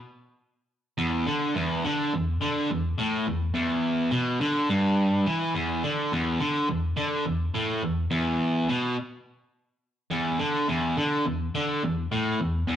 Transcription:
0.98 E2
1.26 D3
1.55 E2
1.84 D3
2.14 E2
2.41 D3
2.70 E2
2.98 A2
3.27 E2
3.54 E2
4.11 B2
4.41 D3
4.70 G2
5.26 E3
5.54 E2
5.84 D3
6.12 E2
6.40 D3
6.69 E2
6.97 D3
7.25 E2
7.55 A2
7.83 E2
8.11 E2
8.69 B2
10.11 E2
10.39 D3
10.68 E2
10.97 D3
11.26 E2
11.55 D3
11.83 E2
12.12 A2
12.40 E2
12.68 E2

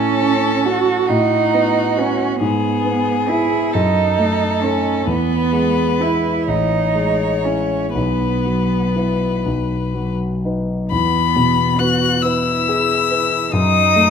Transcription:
Already playing: A2 C#4 A4
0.22 C#4
0.65 F#4 A4
1.07 A2 D#4 F#4
1.54 B3
1.97 C#4 F#4 B4
2.40 G#2 B3 G#4
2.84 B3
3.28 E4 G#4
3.73 F#2 D#4 A4
4.19 A3
4.62 C#4 D#4 A4
5.07 E2 B3 B4
5.53 G#3
6.00 E4 B4
6.48 A1 D#4 C#5
6.95 G#3
7.44 C#4 E4 C#5
7.94 B1 B3 B4
8.46 F#3
8.96 E4 B4
9.46 B1
9.94 F#3
10.45 D#4 B4
10.89 E2 B3 B5
11.36 B2
11.78 B3 F#4 F#6
12.22 E4 B4 E6
12.69 G#4
13.11 B4
13.51 F#2 D#4 D#6
13.96 A3

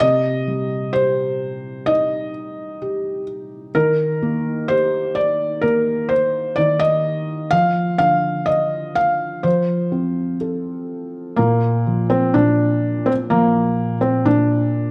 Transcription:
0.00 C3 D#5
0.48 G3
0.93 G4 C5
1.86 D#4 D#5
2.82 G4
3.75 D#3 A#4
4.22 A#3
4.68 G4 C5
5.15 D5
5.61 A#3 A#4
6.09 C5
6.56 D#3 D5
6.79 D#5
7.51 F3 F5
7.98 D3 F5
8.46 D#5 F5
8.95 F5
9.43 F3 C5
9.92 C4
10.41 A4
11.36 A#2 A#3
11.87 F3
12.10 C4
12.34 A#2 D4
13.06 C4
13.30 F3 A#3
14.01 C4
14.25 A#2 D4

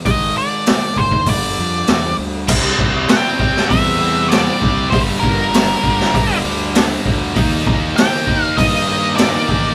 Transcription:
0.05 G#1 G#2 D#3 G#3 D#5, kick, open hi-hat
0.38 D5
0.66 snare, open hi-hat
0.97 G#1 C5, kick
1.12 kick
1.26 G1 G2 D3 G3 D5, kick, open hi-hat
1.58 F2
1.87 E2, snare, open hi-hat
2.19 D2
2.48 C2 C3 G3 C4, kick, crash
2.78 C2 C3 G3 C4, kick
3.08 C3 G3 C4 G5, snare, open hi-hat
3.40 C2 C3 G3 C4, kick
3.56 snare
3.69 E2 C3 G3 C4 E5, kick, open hi-hat
4.00 C3 G3 C4
4.29 C3 G3 C4 D5, snare, open hi-hat
4.62 C2 C3 G3 C4, kick
4.90 G1 G2 D3 G3 C5, kick, open hi-hat
5.20 G1 G2 D3 G3 A#4, kick
5.52 G2 D3 G3, snare, open hi-hat
5.82 G1 G2 D3 G3, kick
6.00 snare
6.13 G1 G2 D3 G3, kick, open hi-hat
6.43 D2 G2 D3 G3
6.74 G2 D3 G3, snare, open hi-hat
7.05 D2 G2 D3 G3, kick
7.36 D#2 D#3 A#3 D#4, kick, open hi-hat
7.66 D#2 D#3 A#3 D#4, kick
7.96 D#3 A#3 D#4 G5, snare, open hi-hat
8.27 D#2 D#3 A#3 D#4, kick
8.44 F5
8.56 G2 D#3 A#3 D#4 D#5, kick, open hi-hat
8.87 D#3 A#3 D#4
9.17 D#3 A#3 D#4 D5, snare, open hi-hat
9.48 A1 D#3 A#3 D#4, kick

